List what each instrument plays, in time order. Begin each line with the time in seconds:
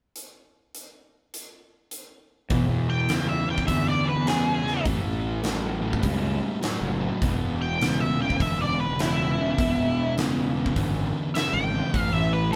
0.16 closed hi-hat
0.75 closed hi-hat
1.34 closed hi-hat
1.91 closed hi-hat
2.50 distorted electric guitar E2 B2, fingered electric bass E2, kick, open hi-hat
2.69 fingered electric bass E2
2.90 lead electric guitar G5
3.09 distorted electric guitar E2 C#3, snare, open hi-hat
3.29 lead electric guitar E5
3.47 distorted electric guitar E2 C#3, lead electric guitar G5
3.58 kick
3.67 distorted electric guitar E2 D3, fingered electric bass E2, lead electric guitar E5, kick, open hi-hat
3.88 lead electric guitar D5
4.09 lead electric guitar B4
4.15 fingered electric bass E2
4.26 distorted electric guitar E2 C#3, lead electric guitar G#4, snare, open hi-hat
4.63 distorted electric guitar E2 C#3, snare
4.85 fingered electric bass A1, distorted electric guitar A2 E3, kick, open hi-hat
5.04 fingered electric bass A1
5.43 distorted electric guitar A2 F#3, snare, open hi-hat
5.81 distorted electric guitar A2 F#3
5.93 kick
6.01 fingered electric bass C#2, distorted electric guitar A2 G3, kick, open hi-hat
6.61 distorted electric guitar A2 F#3, snare, open hi-hat
6.81 fingered electric bass F#1
6.99 distorted electric guitar A2 F#3
7.21 fingered electric bass E1, distorted electric guitar E2 B2, kick, open hi-hat
7.40 fingered electric bass E1
7.62 lead electric guitar G5
7.81 distorted electric guitar E2 C#3, snare, open hi-hat
8.01 lead electric guitar E5
8.20 distorted electric guitar E2 C#3, lead electric guitar G5
8.30 kick
8.40 fingered electric bass E1, distorted electric guitar E2 D3, lead electric guitar E5, kick, open hi-hat
8.61 lead electric guitar D5
8.80 lead electric guitar B4
8.89 fingered electric bass E1
8.99 distorted electric guitar E2 C#3, lead electric guitar E4, snare, open hi-hat
9.37 distorted electric guitar E2 C#3
9.58 fingered electric bass E1, distorted electric guitar E2 B2, kick, open hi-hat
9.78 fingered electric bass E1
10.17 distorted electric guitar E2 C#3, snare, open hi-hat
10.56 distorted electric guitar E2 C#3
10.66 kick
10.75 fingered electric bass G#1, distorted electric guitar E2 D3, kick, open hi-hat
11.34 distorted electric guitar E2 C#3, lead electric guitar E5, snare, open hi-hat
11.53 fingered electric bass G#1, lead electric guitar G5
11.73 distorted electric guitar E2 C#3
11.93 fingered electric bass A1, distorted electric guitar A2 E3, kick, open hi-hat
11.99 lead electric guitar F5
12.13 fingered electric bass A1, lead electric guitar E5
12.33 lead electric guitar B4
12.51 distorted electric guitar A2 F#3, lead electric guitar A4